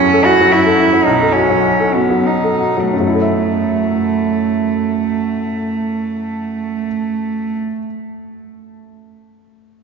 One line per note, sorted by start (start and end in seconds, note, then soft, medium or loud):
0.00 1.03 F#2 soft
0.00 0.28 F#3 soft
0.00 0.26 C#4 medium
0.00 0.26 E4 soft
0.00 0.13 A4 soft
0.13 0.34 A4 soft
0.25 0.47 E4 soft
0.25 0.53 F#4 medium
0.41 0.82 F#3 soft
0.52 1.06 E4 medium
0.66 0.87 A4 soft
0.79 1.01 E4 soft
0.93 1.06 F#3 soft
1.05 2.89 B1 soft
1.05 1.34 D#4 medium
1.22 1.44 A4 soft
1.32 1.95 C#4 medium
1.32 1.59 F#4 soft
1.49 1.98 F#3 soft
1.80 2.04 A4 soft
1.94 2.27 B3 soft
1.94 2.20 F#4 soft
2.10 2.63 F#3 soft
2.26 2.91 D#4 soft
2.44 2.70 A4 soft
2.60 2.86 F#4 soft
2.77 2.93 F#3 soft
2.91 7.58 F#2 soft
2.91 7.57 A3 soft
3.00 7.65 F#3 soft
3.07 7.72 E4 soft
3.14 7.79 A4 soft
3.21 7.86 E5 soft